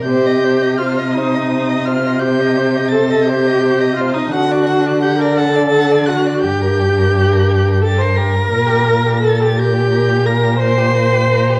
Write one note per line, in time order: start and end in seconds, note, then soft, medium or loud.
0.03 4.27 C3 medium
0.03 0.79 G6 loud
0.07 0.80 G4 medium
0.07 0.28 C5 medium
0.26 0.45 D#5 medium
0.44 0.63 C5 medium
0.62 0.79 D#5 medium
0.77 1.17 F4 medium
0.77 1.00 C5 medium
0.77 1.13 F6 medium
0.99 1.19 D#5 medium
1.13 1.87 D#4 medium
1.13 1.86 D#6 loud
1.17 1.36 C5 medium
1.35 1.51 D#5 medium
1.51 1.70 C5 medium
1.69 1.89 D#5 medium
1.85 2.23 F4 medium
1.85 2.07 C5 medium
1.85 2.21 F6 loud
2.06 2.21 D#5 medium
2.19 2.93 G4 medium
2.19 2.42 C5 medium
2.19 2.90 G6 loud
2.41 2.59 D#5 medium
2.57 2.78 C5 medium
2.76 2.92 D#5 medium
2.88 3.28 A4 medium
2.88 3.24 A6 loud
2.94 3.12 C5 medium
3.10 3.31 D#5 medium
3.24 3.96 G4 loud
3.24 3.98 G6 loud
3.29 3.49 C5 medium
3.48 3.63 D#5 medium
3.65 3.83 C5 medium
3.81 4.03 D#5 medium
3.96 4.16 F4 medium
3.96 4.15 F6 medium
4.01 4.20 C5 medium
4.14 4.34 D#4 medium
4.14 4.33 D#6 medium
4.18 4.33 D#5 medium
4.31 6.43 D3 medium
4.31 5.03 F#4 medium
4.31 4.53 F#5 medium
4.31 5.04 F#6 loud
4.52 4.68 D5 medium
4.66 4.88 F#5 medium
4.87 5.02 D5 medium
5.03 5.20 G4 medium
5.03 5.22 F#5 medium
5.03 5.23 G6 loud
5.20 5.40 A#4 medium
5.20 5.39 D5 medium
5.20 5.38 A#6 loud
5.37 6.10 A4 medium
5.37 5.58 F#5 medium
5.37 6.08 A6 loud
5.56 5.73 D5 medium
5.75 5.93 F#5 medium
5.91 6.10 D5 medium
6.06 6.45 F#4 medium
6.06 6.28 F#5 medium
6.06 6.41 F#6 loud
6.26 6.43 D5 medium
6.41 8.51 G2 medium
6.41 6.63 G4 medium
6.41 7.83 G4 medium
6.41 7.78 G6 loud
6.62 6.81 A#4 medium
6.80 7.00 G4 medium
6.98 7.13 A#4 medium
7.14 7.34 G4 medium
7.32 7.51 A#4 medium
7.50 7.69 G4 medium
7.67 7.83 A#4 medium
7.81 8.03 G4 medium
7.81 7.99 A4 medium
7.81 8.02 A6 loud
7.98 8.19 A#4 medium
7.98 8.18 C5 medium
7.98 8.17 C7 loud
8.16 8.37 G4 medium
8.16 9.22 A#4 medium
8.16 9.25 A#6 loud
8.36 8.50 A#4 medium
8.50 11.60 A#2 medium
8.50 8.68 A#4 medium
8.67 8.89 G4 medium
8.88 9.07 A#4 medium
9.06 9.23 G4 medium
9.23 9.57 A4 medium
9.23 9.42 A#4 medium
9.23 9.60 A6 loud
9.41 9.59 G4 medium
9.57 10.27 G4 medium
9.57 9.75 A#4 medium
9.57 10.27 G6 loud
9.74 9.91 G4 medium
9.91 10.10 A#4 medium
10.09 10.27 G4 medium
10.25 10.44 A#4 medium
10.25 10.59 A#4 medium
10.25 10.61 A#6 loud
10.43 10.60 G4 medium
10.60 10.79 A#4 medium
10.60 11.60 C5 loud
10.60 11.60 C7 loud
10.77 10.96 G4 medium
10.95 11.15 A#4 medium
11.13 11.30 G4 medium
11.31 11.51 A#4 medium
11.50 11.60 G4 medium